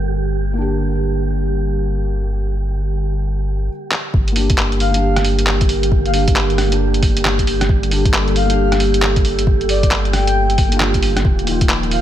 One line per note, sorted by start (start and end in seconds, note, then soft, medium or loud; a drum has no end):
0.00 3.69 G1 medium
0.00 3.65 D3 medium
0.00 3.65 G3 medium
0.00 0.52 A#3 medium
0.00 3.65 A#3 medium
0.00 0.56 D4 medium
0.00 0.58 G4 medium
0.00 3.65 G4 medium
0.00 3.69 G4 medium
0.00 3.65 A#4 medium
0.53 3.67 A#3 medium
0.57 3.69 D4 medium
0.61 3.71 G4 medium
3.91 clap medium
4.14 11.23 G1 medium
4.14 11.21 D3 medium
4.14 11.21 G3 medium
4.14 12.01 A#3 medium
4.14 12.01 G4 medium
4.14 11.21 G4 medium
4.14 7.66 A#4 medium
4.14 kick loud
4.28 closed hi-hat soft
4.32 4.89 A#3 medium
4.32 4.91 D4 medium
4.36 4.93 G4 medium
4.36 open hi-hat medium
4.50 kick loud
4.50 closed hi-hat medium
4.58 clap loud
4.72 closed hi-hat soft
4.80 5.25 F5 medium
4.80 open hi-hat medium
4.90 6.08 A#3 medium
4.90 6.12 D4 medium
4.90 closed hi-hat medium
4.98 6.14 G4 medium
5.16 cross-stick medium
5.16 closed hi-hat soft
5.25 open hi-hat medium
5.39 closed hi-hat medium
5.47 clap loud
5.61 kick loud
5.61 closed hi-hat soft
5.69 open hi-hat medium
5.83 closed hi-hat medium
5.92 kick loud
6.06 6.66 A#3 medium
6.06 6.11 F5 medium
6.06 closed hi-hat soft
6.13 6.69 D4 medium
6.13 6.71 G4 medium
6.13 6.23 F5 medium
6.13 open hi-hat medium
6.28 kick loud
6.28 closed hi-hat medium
6.36 clap loud
6.50 closed hi-hat soft
6.58 cross-stick medium
6.58 open hi-hat medium
6.68 7.86 A#3 medium
6.68 7.89 D4 medium
6.72 7.91 G4 medium
6.72 closed hi-hat medium
6.94 closed hi-hat soft
7.03 kick loud
7.03 open hi-hat medium
7.17 closed hi-hat medium
7.25 cross-stick medium
7.25 clap loud
7.39 kick medium
7.39 closed hi-hat soft
7.47 open hi-hat medium
7.61 cross-stick medium
7.61 closed hi-hat medium
7.69 11.21 A4 medium
7.69 kick loud
7.83 closed hi-hat soft
7.88 8.44 A#3 medium
7.88 8.46 D4 medium
7.88 open hi-hat medium
7.96 8.49 G4 medium
8.05 kick loud
8.05 closed hi-hat medium
8.14 clap loud
8.28 closed hi-hat soft
8.36 8.80 F5 loud
8.36 open hi-hat medium
8.46 9.65 A#3 medium
8.50 9.67 D4 medium
8.50 9.69 G4 medium
8.50 closed hi-hat medium
8.72 cross-stick medium
8.72 closed hi-hat soft
8.80 open hi-hat medium
8.94 closed hi-hat medium
9.02 clap loud
9.16 kick loud
9.16 closed hi-hat soft
9.25 open hi-hat medium
9.39 closed hi-hat medium
9.47 kick loud
9.61 closed hi-hat soft
9.69 9.93 D5 loud
9.69 open hi-hat medium
9.83 kick loud
9.83 closed hi-hat medium
9.91 clap loud
10.05 closed hi-hat soft
10.13 10.77 G5 loud
10.13 cross-stick medium
10.13 open hi-hat medium
10.27 closed hi-hat medium
10.50 closed hi-hat soft
10.58 kick loud
10.58 open hi-hat medium
10.68 11.22 A#3 medium
10.72 11.24 D4 medium
10.72 11.26 F4 medium
10.72 closed hi-hat medium
10.80 cross-stick medium
10.80 clap loud
10.94 kick medium
10.94 closed hi-hat soft
11.03 open hi-hat medium
11.17 cross-stick medium
11.17 closed hi-hat medium
11.24 12.01 D#1 medium
11.24 12.01 D#3 medium
11.24 12.01 F3 medium
11.24 12.01 F4 medium
11.24 12.01 A#4 medium
11.24 kick loud
11.39 closed hi-hat soft
11.43 12.00 A#3 medium
11.43 open hi-hat medium
11.47 12.01 D#4 medium
11.47 12.01 F4 medium
11.61 kick loud
11.61 closed hi-hat medium
11.69 clap loud
11.83 closed hi-hat soft
11.91 12.01 F5 loud
11.91 open hi-hat medium